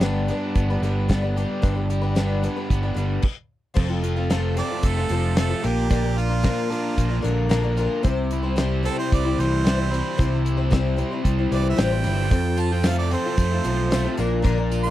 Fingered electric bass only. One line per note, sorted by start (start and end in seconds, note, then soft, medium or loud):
0.00 0.30 G1 medium
0.56 0.76 G1 medium
0.81 1.44 G1 medium
1.64 2.46 G1 medium
2.70 2.91 G1 medium
2.96 3.17 G1 medium
3.77 4.60 F1 medium
4.83 5.04 F1 medium
5.10 5.52 F1 medium
5.64 6.47 A#1 medium
6.98 7.19 A#1 loud
7.24 7.86 A#1 medium
8.05 8.87 C2 medium
9.13 9.33 C2 medium
9.38 10.00 C2 medium
10.19 11.01 C2 medium
11.25 11.46 C2 loud
11.51 11.72 C2 medium
11.79 12.03 A1 medium
12.05 12.29 G1 medium
12.32 13.14 F2 loud
13.38 13.59 F2 loud
13.65 14.06 B1 medium
14.19 14.90 A#1 loud